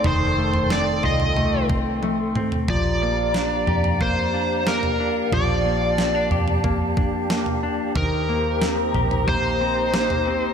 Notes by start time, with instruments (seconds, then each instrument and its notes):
Already playing: clean electric guitar A3 C4 F4, flute section D#4 A4 C6
0.04 fingered electric bass F1, clean electric guitar D#3, electric slide guitar C5, flute section G5, floor tom
0.38 clean electric guitar A3
0.54 floor tom
0.70 clean electric guitar C4, electric slide guitar D5, snare
1.03 fingered electric bass C2, clean electric guitar F4, electric slide guitar D#5, floor tom
1.20 floor tom
1.37 clean electric guitar A3, floor tom
1.70 clean electric guitar C4, kick
2.03 clean electric guitar A3, high tom
2.35 clean electric guitar C4, mid tom
2.52 floor tom
2.68 fingered electric bass A#1, clean electric guitar F3, flute section G4 D5 F5 A#5, electric slide guitar D5, kick, floor tom
3.02 clean electric guitar A#3
3.34 clean electric guitar D4, snare
3.67 fingered electric bass F2, clean electric guitar G4, floor tom
3.84 floor tom
4.01 clean electric guitar A#3, electric slide guitar C5, kick, floor tom
4.34 clean electric guitar D4
4.67 clean electric guitar A#3, electric slide guitar A#4, snare
4.83 floor tom
5.00 clean electric guitar D4
5.32 fingered electric bass A#1, clean electric guitar F3, electric slide guitar D5, flute section A5, floor tom
5.65 clean electric guitar A#3
5.98 clean electric guitar C4, snare
6.15 clean electric guitar D4
6.31 fingered electric bass F2, clean electric guitar G4, floor tom
6.48 floor tom
6.64 clean electric guitar A#3, kick, floor tom
6.97 clean electric guitar D4, kick
7.30 clean electric guitar A#3, snare
7.46 floor tom
7.63 clean electric guitar D4
7.95 fingered electric bass D#2, clean electric guitar D#3, flute section D#4 C5 A#5, electric slide guitar A#4, kick, floor tom
8.29 clean electric guitar A#3
8.62 clean electric guitar C4, snare
8.94 fingered electric bass A#1, clean electric guitar G4, floor tom
9.11 floor tom
9.28 clean electric guitar A#3, electric slide guitar C5, kick, floor tom
9.61 clean electric guitar C4
9.94 clean electric guitar A#3, snare
10.10 floor tom
10.27 clean electric guitar C4